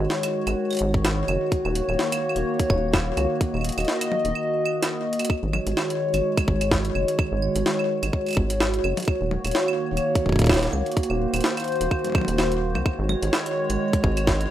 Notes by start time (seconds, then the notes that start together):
Already playing: D#3 G#3 F#4 C#5
0.10 snare
0.23 closed hi-hat, claves
0.47 G#1, closed hi-hat, claves
0.71 closed hi-hat, claves
0.73 closed hi-hat
0.75 closed hi-hat
0.77 closed hi-hat
0.79 G#1, closed hi-hat
0.94 kick
1.05 snare, closed hi-hat, claves
1.28 F#1, closed hi-hat, claves
1.52 A#3 C#5, kick, closed hi-hat
1.65 D#1, claves
1.75 closed hi-hat
1.89 D#1, claves
1.99 snare
2.12 closed hi-hat, claves
2.29 claves
2.36 D#1, closed hi-hat
2.59 kick, closed hi-hat
2.70 D#1, kick, claves
2.94 kick, snare, claves
3.17 C#2, closed hi-hat, claves
3.41 D#5, kick, closed hi-hat
3.54 D#1, claves
3.57 claves
3.61 closed hi-hat, claves
3.69 closed hi-hat
3.72 closed hi-hat
3.78 D#1, closed hi-hat, claves
3.80 closed hi-hat
3.85 snare, closed hi-hat
4.01 closed hi-hat, claves
4.12 high tom
4.25 D#1, closed hi-hat
4.35 claves
4.65 claves
4.83 snare, closed hi-hat, claves
5.13 closed hi-hat
5.19 closed hi-hat, claves
5.25 closed hi-hat
5.30 D#3 G#3 F#4 C#5, kick, claves
5.43 G#1
5.53 high tom, claves
5.67 G#1, closed hi-hat
5.77 snare, claves
5.90 closed hi-hat
6.14 G#1, closed hi-hat, claves
6.37 kick, closed hi-hat, claves
6.48 G#1, kick
6.61 closed hi-hat, claves
6.71 kick, snare
6.85 closed hi-hat
6.95 F#1, claves
7.08 closed hi-hat
7.19 kick, claves
7.32 G#1
7.42 claves
7.56 G#1, closed hi-hat
7.66 snare
7.79 claves
8.03 G#1, closed hi-hat, claves
8.13 kick
8.26 closed hi-hat, claves
8.29 closed hi-hat, claves
8.31 closed hi-hat, claves
8.33 closed hi-hat, claves
8.35 G#1, kick, closed hi-hat, claves
8.50 closed hi-hat
8.60 snare, claves
8.74 closed hi-hat
8.84 F#1, claves
8.97 closed hi-hat, high tom
9.00 closed hi-hat
9.03 closed hi-hat
9.05 D#3 A#3 C#5, kick, closed hi-hat, claves
9.21 D#1
9.31 high tom
9.45 D#1, closed hi-hat, claves
9.47 closed hi-hat
9.51 snare, closed hi-hat
9.68 claves
9.92 D#1
9.97 closed hi-hat, claves
10.15 kick, closed hi-hat
10.26 D#1, kick
10.29 kick
10.32 kick
10.36 kick, closed hi-hat
10.39 kick
10.42 kick
10.44 kick, closed hi-hat
10.47 kick
10.49 kick, snare, claves
10.53 snare, closed hi-hat
10.56 snare
10.59 snare
10.63 snare, closed hi-hat
10.65 snare
10.68 snare
10.71 C#2, snare, claves
10.86 closed hi-hat
10.92 closed hi-hat
10.97 C5, kick, closed hi-hat
11.03 closed hi-hat
11.10 D#1, claves
11.34 D#1, closed hi-hat, claves
11.36 closed hi-hat
11.41 snare, closed hi-hat
11.57 closed hi-hat, claves
11.60 closed hi-hat
11.64 closed hi-hat
11.68 closed hi-hat
11.72 closed hi-hat
11.76 closed hi-hat
11.81 D#1, closed hi-hat
11.91 kick, claves
12.04 closed hi-hat, high tom
12.07 high tom
12.10 high tom
12.12 kick, high tom
12.15 high tom, claves
12.18 high tom
12.21 high tom
12.25 D#1, closed hi-hat, high tom
12.38 snare, claves
12.52 closed hi-hat
12.75 C#2, high tom, claves
12.86 D#3 G#3 C#5, kick, claves
12.99 G#1
13.09 high tom, claves
13.23 G#1, closed hi-hat
13.33 snare, claves
13.46 closed hi-hat
13.70 G#1, closed hi-hat, claves
13.93 kick, closed hi-hat
14.04 G#1, kick
14.17 closed hi-hat, claves
14.27 kick, snare
14.41 closed hi-hat